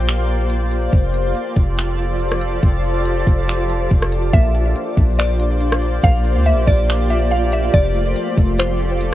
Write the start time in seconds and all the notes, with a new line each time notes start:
Already playing: A#1 A#3 F4 G4 C5 D5
0.08 finger snap, closed hi-hat
0.29 closed hi-hat
0.50 closed hi-hat
0.71 closed hi-hat
0.93 F1 F3 F4 G4 A4 D5, kick, closed hi-hat
1.14 closed hi-hat
1.35 closed hi-hat
1.56 F1, kick, closed hi-hat
1.78 finger snap, closed hi-hat
1.99 closed hi-hat
2.20 closed hi-hat
2.32 cross-stick
2.41 closed hi-hat
2.63 F1, kick, closed hi-hat
2.84 closed hi-hat
3.05 closed hi-hat
3.27 F1, kick, closed hi-hat
3.48 finger snap, closed hi-hat
3.70 closed hi-hat
3.90 F1, kick, closed hi-hat
4.02 cross-stick
4.12 closed hi-hat
4.33 A#1 A#3 F4 G4 C5 D5 E5, kick, closed hi-hat
4.54 D4, closed hi-hat
4.76 A#3, closed hi-hat
4.97 A#1 D4, kick, closed hi-hat
5.18 A#3 D5, finger snap, closed hi-hat
5.40 D4, closed hi-hat
5.61 D4, closed hi-hat
5.72 cross-stick
5.82 D5, closed hi-hat
6.03 A#1 A#3 F5, kick, closed hi-hat
6.25 D4, closed hi-hat
6.36 D2
6.46 A#3 E5, closed hi-hat
6.52 A#1
6.67 A#1 D4 D5, kick, open hi-hat
6.89 A#3, finger snap, closed hi-hat
7.10 D4 E5, closed hi-hat
7.31 D4 F5, closed hi-hat
7.52 D5 E5, closed hi-hat
7.74 F1 F3 F4 A4 D5, kick, closed hi-hat
7.94 A3, closed hi-hat
8.16 F3, closed hi-hat
8.37 F1 A3, kick, closed hi-hat
8.59 F3 C5, finger snap, closed hi-hat
8.80 A3, closed hi-hat
9.01 A3, closed hi-hat